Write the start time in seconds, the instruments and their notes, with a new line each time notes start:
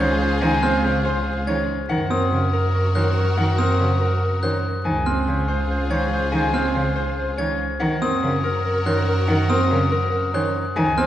Already playing: double bass section C#2, string section F4 G#4, harp C5 G#5
0.00 cello D#3, grand piano C#4, clarinet C5, harp C#5, glockenspiel G#6
0.21 clarinet C5
0.41 cello D#3, clarinet C5, harp G#5
0.63 grand piano C4, clarinet C5, glockenspiel F6
0.83 cello C#3, clarinet C5
1.05 clarinet C5, grand piano C5, harp C5
1.27 clarinet C5
1.47 cello D#3, grand piano C#4, clarinet C5, harp C#5, glockenspiel G#6
1.89 double bass section F#2, cello D#3, string section F#4 A#4, clarinet A#4, harp F#5
2.10 grand piano C4, clarinet A#4, glockenspiel D#6
2.32 cello C#3, clarinet A#4
2.53 grand piano A#4, harp A#4, clarinet A#4
2.73 clarinet A#4
2.95 cello D#3, grand piano C#4, clarinet A#4, harp C5, glockenspiel F#6
3.16 clarinet A#4
3.37 cello D#3, clarinet A#4, harp F#5
3.58 grand piano C4, clarinet A#4, glockenspiel D#6
3.79 cello C#3, clarinet A#4
4.00 clarinet A#4, grand piano A#4, harp A#4
4.21 clarinet A#4
4.42 cello D#3, grand piano C#4, clarinet A#4, harp C5, glockenspiel F#6
4.85 double bass section C#2, cello D#3, string section F4 G#4, clarinet C5, harp G#5
5.06 grand piano C4, clarinet C5, glockenspiel F6
5.27 cello C#3, clarinet C5
5.48 harp C5, grand piano C5, clarinet C5
5.70 clarinet C5
5.90 cello D#3, grand piano C#4, clarinet C5, harp C#5, glockenspiel G#6
6.13 clarinet C5
6.32 cello D#3, clarinet C5, harp G#5
6.53 grand piano C4, clarinet C5, glockenspiel F6
6.75 cello C#3, clarinet C5
6.95 harp C5, grand piano C5, clarinet C5
7.17 clarinet C5
7.37 cello D#3, grand piano C#4, clarinet C5, harp C#5, glockenspiel G#6
7.80 double bass section F#2, cello D#3, string section F#4 A#4, clarinet A#4, harp F#5
8.02 grand piano C4, clarinet A#4, glockenspiel D#6
8.23 cello C#3, clarinet A#4
8.43 harp A#4, grand piano A#4, clarinet A#4
8.65 clarinet A#4
8.86 cello D#3, grand piano C#4, clarinet A#4, harp C5, glockenspiel F#6
9.08 clarinet A#4
9.28 cello D#3, clarinet A#4, harp F#5
9.50 grand piano C4, clarinet A#4, glockenspiel D#6
9.70 cello C#3, clarinet A#4
9.92 harp A#4, grand piano A#4, clarinet A#4
10.14 clarinet A#4
10.34 cello D#3, grand piano C#4, clarinet A#4, harp C5, glockenspiel F#6
10.76 double bass section C#2, cello D#3, string section F4 G#4, clarinet C5, harp G#5
10.98 grand piano C4, clarinet C5, glockenspiel F6